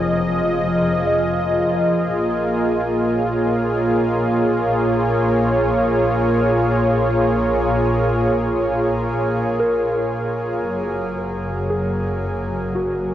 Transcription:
0.00 2.09 F1 medium
0.00 2.15 F3 medium
0.00 13.14 A#3 medium
0.00 10.65 F4 medium
0.00 13.14 G#4 medium
0.00 4.23 D#5 medium
1.06 2.64 D#5 medium
2.14 10.60 A#1 medium
2.14 12.33 A#3 medium
3.01 13.14 C#5 medium
6.41 7.96 C#5 medium
9.60 11.13 A#4 medium
10.63 13.14 F#1 medium
10.63 13.14 F#3 medium
11.70 13.14 G#4 medium
12.75 13.14 F#4 medium

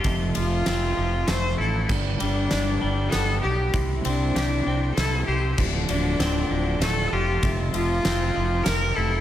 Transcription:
0.00 1.58 F4 medium
0.00 1.86 C5 soft
0.04 0.31 F1 medium
0.04 1.58 F2 medium
0.04 3.71 F3 medium
0.04 1.88 E5 medium
0.04 1.88 A5 medium
0.04 kick medium
0.04 ride medium
0.35 0.62 F1 medium
0.35 0.96 F3 medium
0.35 1.31 F4 medium
0.35 ride medium
0.66 0.93 F1 medium
0.66 1.90 C4 medium
0.66 snare medium
0.66 ride medium
0.97 1.23 F1 medium
0.97 1.90 F3 medium
1.28 1.54 F1 medium
1.28 1.90 A3 medium
1.28 1.59 C5 medium
1.28 snare medium
1.28 ride medium
1.58 1.85 A1 medium
1.58 1.89 E4 medium
1.58 1.88 A4 medium
1.89 2.15 G1 medium
1.89 3.43 G2 medium
1.89 7.39 D5 medium
1.89 5.56 G5 medium
1.89 3.73 B5 medium
1.89 kick medium
1.89 crash medium
2.20 2.46 G1 medium
2.20 2.80 G3 medium
2.20 3.11 D4 medium
2.20 ride medium
2.50 2.78 G1 medium
2.50 3.77 D4 medium
2.50 snare medium
2.50 ride medium
2.81 3.08 G1 medium
2.81 3.74 G3 medium
3.10 3.74 B3 medium
3.10 3.41 A4 medium
3.10 snare medium
3.10 ride medium
3.14 3.39 G1 medium
3.41 3.70 B1 medium
3.41 3.71 G4 medium
3.41 3.74 G4 medium
3.73 4.00 C2 medium
3.73 5.28 C3 medium
3.73 5.56 E4 medium
3.73 9.21 C6 medium
3.73 kick medium
3.73 ride medium
4.04 4.31 C2 medium
4.04 4.66 C4 medium
4.04 4.93 D4 medium
4.04 ride medium
4.35 4.61 C2 medium
4.35 5.58 G4 medium
4.35 snare medium
4.35 ride medium
4.66 4.92 C2 medium
4.66 5.61 C4 medium
4.94 5.23 C2 medium
4.94 5.59 E4 medium
4.94 5.24 A4 medium
4.94 snare medium
4.94 ride medium
5.26 5.53 C2 medium
5.26 5.55 G4 medium
5.26 5.61 C5 medium
5.58 5.84 D1 medium
5.58 7.12 D2 medium
5.58 9.21 F3 medium
5.58 9.21 A5 medium
5.58 kick medium
5.58 crash medium
5.89 6.15 D1 medium
5.89 6.49 D3 medium
5.89 6.83 D4 medium
5.89 ride medium
6.19 6.45 D1 medium
6.19 7.42 C4 medium
6.19 snare medium
6.19 ride medium
6.50 6.76 D1 medium
6.50 7.43 D3 medium
6.80 7.06 D1 medium
6.80 7.43 A3 medium
6.80 7.15 A4 medium
6.80 snare medium
6.80 ride medium
7.12 7.38 F1 medium
7.12 8.96 F4 medium
7.12 7.43 G4 medium
7.43 7.69 F1 loud
7.43 8.96 F2 medium
7.43 9.21 E5 medium
7.43 kick medium
7.43 ride medium
7.74 7.99 F1 medium
7.74 8.34 F3 medium
7.74 8.65 F4 medium
7.74 ride medium
8.05 8.30 F1 medium
8.05 9.21 C4 medium
8.05 snare medium
8.05 ride medium
8.36 8.61 F1 medium
8.36 9.21 F3 medium
8.63 8.92 F1 medium
8.63 8.97 A#4 loud
8.63 snare medium
8.63 ride medium
8.95 9.21 F1 medium
8.95 9.21 E4 medium
8.95 9.21 A4 medium

